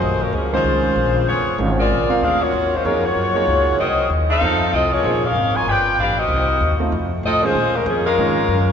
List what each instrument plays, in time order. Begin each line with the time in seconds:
Already playing: saxophone section A#3 F4 G#4 C5
0.02 upright bass A#1
0.22 saxophone section G#3 C#4 F4 A#4
0.33 upright bass C#2, saxophone section F3 A#3 C#4 G#4
0.53 grand piano D#3 G#3 C#4 F4, saxophone section A#3 F4 G#4 C5
0.64 upright bass C2
0.96 upright bass A#1
1.27 upright bass F1, saxophone section B3 F4 G#4 C#5
1.58 upright bass G#1, grand piano D#3 G#3 C#4 F4
1.80 saxophone section A#3 F4 G#4 D5
1.90 upright bass A#1
2.09 grand piano C4 F4 A#4 F5, muted upright bass stroke
2.21 upright bass D2, saxophone section D4 G#4 A#4 F5
2.41 saxophone section A#3 F4 F#4 C#5, muted upright bass stroke
2.53 upright bass D#2
2.75 saxophone section G#3 C#4 F4 C5
2.85 upright bass F2, saxophone section F#3 C#4 F4 A#4, grand piano A#3 D#4 G#4 C#5
3.04 saxophone section A#3 F4 F#4 C#5
3.16 upright bass F#2
3.35 grand piano A#3 D#4 G#4 C#5
3.47 upright bass C#2
3.79 upright bass C2, saxophone section C4 F#4 A#4 D#5
4.10 upright bass D#2
4.30 saxophone section D#4 A4 C5 F5
4.41 upright bass F2, grand piano C4 D#4 F4 A4
4.73 upright bass C2, saxophone section C4 F4 A4 D#5
4.93 saxophone section A#3 F4 G#4 C#5
5.04 upright bass A#1, grand piano A#3 D#4 G#4 C5
5.25 saxophone section C#4 G#4 A#4 F5
5.35 upright bass G#1
5.57 saxophone section F4 A#4 C#5 G#5
5.66 upright bass G1, saxophone section F4 B4 D5 G5
5.97 upright bass A1, saxophone section D4 G4 B4 F5
6.18 saxophone section C4 F#4 A#4 D#5
6.28 upright bass C2
6.60 upright bass D#2
6.80 grand piano A3 C4 D#4 F4, muted upright bass stroke
6.92 upright bass F2
7.23 upright bass A2, saxophone section C4 F4 A4 D#5
7.43 grand piano D#3 G#3 C#4 G#4, saxophone section A#3 F4 G#4 C5
7.55 upright bass A#2
7.74 saxophone section G#3 C#4 F4 A#4, muted upright bass stroke
7.86 upright bass F2, saxophone section F3 A#3 C#4 G#4
8.07 saxophone section G#3 C#4 F4 A#4
8.18 upright bass G#2, grand piano D#3 G#3 C#4 F4
8.48 upright bass F#2